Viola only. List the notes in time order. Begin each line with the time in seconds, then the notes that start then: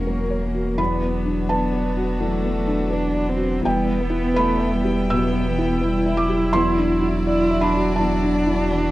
0.08 A#3
0.79 B3
1.51 B3
2.21 A3
2.93 D4
3.28 C4
3.65 B3
5.11 B3
5.83 E4
7.25 E4
7.63 D4
7.98 D4